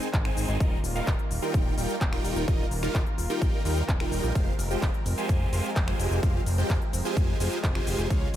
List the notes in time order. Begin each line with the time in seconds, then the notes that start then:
Already playing: D#3 G#3 C4
0.02 closed hi-hat, shaker
0.13 G#1, kick, clap, closed hi-hat, shaker
0.25 G#3 C4 D#4 C5 G#5, finger snap
0.37 G#1, open hi-hat, shaker
0.49 G#1, closed hi-hat, shaker
0.60 D#1 G3 A#3 D#4 F4 A#4 D#5, kick, closed hi-hat, shaker
0.84 D#1, open hi-hat, shaker
0.95 G3 D#4 F4 A#4 F5, shaker
1.07 D#1, kick, clap, closed hi-hat, shaker
1.19 closed hi-hat
1.31 D#1, open hi-hat, shaker
1.42 G3 D#4 F4 A#4 G5, closed hi-hat, shaker
1.54 D#1, kick, closed hi-hat, shaker
1.77 D#1 G3 D#4 F4 A#4 G5, open hi-hat, shaker
1.89 closed hi-hat, shaker
2.01 D#1, kick, clap, closed hi-hat, shaker
2.13 G3 D#4 F4 A#4 G5, finger snap
2.24 D#1, open hi-hat, shaker
2.36 D#1, closed hi-hat, shaker
2.48 D#1 G3 D#4 F4 D#5, kick, closed hi-hat, shaker
2.71 D#1, open hi-hat, shaker
2.83 G3 D#4 F4 A#4 F5, finger snap, closed hi-hat, shaker
2.95 D#1, kick, clap, closed hi-hat, shaker
3.07 closed hi-hat
3.18 D#1, open hi-hat, shaker
3.30 G3 D#4 F4 A#4 G5, closed hi-hat, shaker
3.42 A#1, kick, closed hi-hat, shaker
3.65 D#2 G3 D#4 F4 A#4 G5, open hi-hat, shaker
3.77 closed hi-hat, shaker
3.89 D#1, kick, clap, closed hi-hat, shaker
4.00 G3 D#4 F4 A#4 G5, finger snap
4.12 D#1, open hi-hat, shaker
4.23 A#1, closed hi-hat, shaker
4.35 F1 F3 G#3 C4, kick, closed hi-hat, ride, shaker
4.59 F1, open hi-hat, ride, shaker
4.71 G#3 F4 G4 C5 G5, closed hi-hat, shaker
4.82 F1, kick, clap, closed hi-hat, ride, shaker
4.94 closed hi-hat
5.06 F1, open hi-hat, ride, shaker
5.18 G#3 F4 G4 C5 G#5, closed hi-hat, shaker
5.29 F1, kick, closed hi-hat, ride, shaker
5.52 F1 G#3 F4 G4 C5 G#5, open hi-hat, ride, shaker
5.65 shaker
5.76 F1, kick, clap, closed hi-hat, ride, shaker
5.88 G#3 F4 G4 C5 G#5, finger snap
5.99 F1, open hi-hat, ride, shaker
6.11 F1, closed hi-hat, shaker
6.23 F1 G#3 F4 G4 C5 F5, kick, closed hi-hat, ride, shaker
6.46 F1, open hi-hat, ride, shaker
6.58 G#3 F4 G4 C5 G5, closed hi-hat, shaker
6.70 F1, kick, clap, closed hi-hat, ride, shaker
6.82 closed hi-hat
6.93 F1, open hi-hat, ride, shaker
7.05 G#3 F4 G4 C5 G#5, closed hi-hat, shaker
7.17 F1, kick, closed hi-hat, ride, shaker
7.40 F1 G#3 F4 G4 C5 G#5, open hi-hat, ride, shaker
7.52 closed hi-hat, shaker
7.64 F1, kick, clap, closed hi-hat, ride, shaker
7.75 G#3 F4 G4 C5 G#5, finger snap
7.87 F1, open hi-hat, ride, shaker
7.99 F1, closed hi-hat, shaker
8.10 C#2 C#3 G#3 C#4 F4 C#5 F5, kick, closed hi-hat, ride, shaker